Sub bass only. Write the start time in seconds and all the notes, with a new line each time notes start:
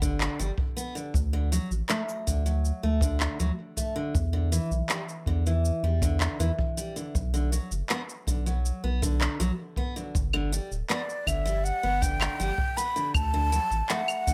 Already playing: G1
0.40 G1
1.14 D2
1.71 A1
2.27 D2
2.83 D2
3.40 D2
4.15 E2
4.71 B1
5.26 E2
5.83 E2
6.39 E2
7.15 B1
7.71 F#1
8.27 B1
8.84 B1
9.40 B1
10.15 G1
10.71 D1
11.27 G1
11.83 G1
12.40 G1
13.14 D2
13.71 A1
14.27 D2